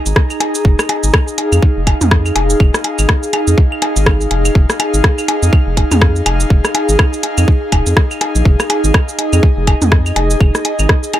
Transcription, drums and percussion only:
0.06 closed hi-hat, shaker
0.16 kick, cross-stick
0.30 claves, shaker
0.40 closed hi-hat, percussion blips
0.55 shaker
0.65 kick
0.79 cross-stick, claves, shaker
0.89 closed hi-hat, percussion blips
1.03 shaker
1.14 kick, cross-stick, closed hi-hat, claves
1.28 shaker
1.38 closed hi-hat, percussion blips
1.52 claves, shaker
1.62 kick
1.87 kick, closed hi-hat, percussion blips, claves
2.01 closed hi-hat, mid tom, shaker
2.11 kick, cross-stick
2.26 claves, shaker
2.36 closed hi-hat, percussion blips
2.50 shaker
2.60 kick, claves
2.74 cross-stick, shaker
2.84 closed hi-hat, percussion blips
2.99 claves, shaker
3.09 kick, cross-stick, closed hi-hat
3.23 shaker
3.33 closed hi-hat, percussion blips, claves
3.48 shaker
3.58 kick
3.72 claves
3.82 closed hi-hat, percussion blips
3.96 closed hi-hat, shaker
4.06 kick, cross-stick, claves
4.21 shaker
4.31 closed hi-hat, percussion blips
4.45 claves, shaker
4.55 kick
4.70 cross-stick, shaker
4.80 closed hi-hat, percussion blips, claves
4.94 shaker
5.04 kick, cross-stick, closed hi-hat
5.18 claves, shaker
5.28 closed hi-hat, percussion blips
5.43 shaker
5.53 kick, claves
5.77 kick, closed hi-hat, percussion blips
5.92 closed hi-hat, mid tom, claves, shaker
6.01 kick, cross-stick
6.16 shaker
6.26 closed hi-hat, percussion blips, claves
6.40 shaker
6.50 kick
6.65 cross-stick, claves, shaker
6.75 closed hi-hat, percussion blips
6.89 shaker
6.99 kick, cross-stick, closed hi-hat, claves
7.13 shaker
7.23 closed hi-hat, percussion blips
7.38 claves, shaker
7.48 kick
7.72 kick, closed hi-hat, percussion blips, claves
7.87 closed hi-hat, shaker
7.97 kick, cross-stick
8.11 claves, shaker
8.21 closed hi-hat, percussion blips
8.35 shaker
8.45 kick
8.60 cross-stick, claves, shaker
8.70 closed hi-hat, percussion blips
8.84 shaker
8.94 kick, cross-stick, closed hi-hat, claves
9.09 shaker
9.19 closed hi-hat, percussion blips
9.33 claves, shaker
9.43 kick
9.67 kick, closed hi-hat, percussion blips, claves
9.82 closed hi-hat, mid tom, shaker
9.92 kick, cross-stick
10.06 claves, shaker
10.16 closed hi-hat, percussion blips
10.30 shaker
10.40 kick, claves
10.55 cross-stick, shaker
10.65 closed hi-hat, percussion blips
10.79 claves, shaker
10.89 kick, cross-stick, closed hi-hat
11.03 shaker
11.13 closed hi-hat, percussion blips, claves

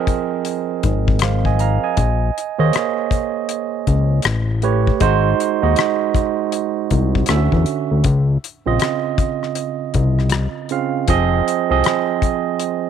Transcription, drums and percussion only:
0.07 kick, closed hi-hat
0.45 closed hi-hat
0.83 kick, closed hi-hat
1.08 kick
1.19 cross-stick, closed hi-hat
1.45 kick
1.59 closed hi-hat
1.97 kick, closed hi-hat
2.38 closed hi-hat
2.73 cross-stick, closed hi-hat
3.11 kick, closed hi-hat
3.49 closed hi-hat
3.87 kick, closed hi-hat
4.22 cross-stick, closed hi-hat
4.62 closed hi-hat
4.87 kick
5.00 kick, closed hi-hat
5.40 closed hi-hat
5.76 cross-stick, closed hi-hat
6.14 kick, closed hi-hat
6.52 closed hi-hat
6.91 kick, closed hi-hat
7.15 kick
7.26 cross-stick, closed hi-hat
7.52 kick
7.66 closed hi-hat
8.04 kick, closed hi-hat
8.44 closed hi-hat
8.80 cross-stick, closed hi-hat
9.18 kick, closed hi-hat
9.43 cross-stick
9.55 closed hi-hat
9.94 kick, closed hi-hat
10.19 cross-stick
10.29 cross-stick, closed hi-hat
10.69 closed hi-hat
11.08 kick, closed hi-hat
11.48 closed hi-hat
11.84 cross-stick, closed hi-hat
12.22 kick, closed hi-hat
12.60 closed hi-hat

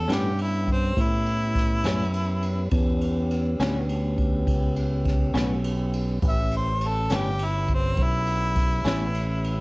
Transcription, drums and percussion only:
0.10 snare, ride
0.38 ride
0.68 kick, ride
0.97 kick, ride
1.26 ride
1.55 kick, snare, ride
1.83 snare, ride
2.13 ride
2.42 ride
2.71 kick, ride
3.01 ride
3.31 ride
3.60 snare, ride
3.89 ride
4.18 kick, ride
4.47 kick, ride
4.76 ride
5.05 kick, snare, ride
5.35 snare, ride
5.64 ride
5.93 ride
6.22 kick, ride
6.51 ride
6.81 ride
7.10 snare, ride
7.39 ride
7.68 kick, ride
7.97 kick, ride
8.26 ride
8.56 kick, snare, ride
8.85 snare, ride
9.14 ride
9.44 ride

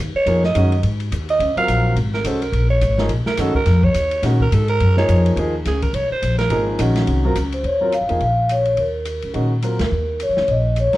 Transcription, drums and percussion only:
0.26 ride
0.44 snare
0.55 hi-hat pedal, ride
0.72 ride
0.83 ride
1.00 ride
1.12 hi-hat pedal, ride
1.29 ride
1.40 ride
1.57 ride
1.68 hi-hat pedal, ride
1.96 ride
2.14 snare
2.25 hi-hat pedal, ride
2.42 ride
2.53 ride
2.81 hi-hat pedal, ride
2.98 snare
3.09 ride
3.26 snare
3.37 snare, hi-hat pedal, ride
3.55 kick
3.66 snare, ride
3.83 kick
3.94 hi-hat pedal, ride
4.11 ride
4.23 snare, ride
4.40 kick
4.52 hi-hat pedal, ride
4.68 ride
4.80 ride
4.97 snare
5.09 hi-hat pedal, ride
5.26 ride
5.37 ride
5.65 snare, hi-hat pedal, ride
5.82 kick, ride
5.94 ride
6.23 hi-hat pedal, ride
6.39 snare, ride
6.50 ride
6.79 hi-hat pedal, ride
6.96 snare, ride
7.07 ride
7.35 hi-hat pedal, ride
7.52 ride
7.64 ride
7.92 hi-hat pedal, ride
8.09 ride
8.20 ride
8.49 hi-hat pedal, ride
8.65 ride
8.77 ride
9.05 hi-hat pedal, ride
9.22 ride
9.34 ride
9.62 hi-hat pedal, ride
9.79 snare, ride
10.20 hi-hat pedal, ride
10.37 snare
10.48 ride
10.76 hi-hat pedal, ride
10.93 snare, ride

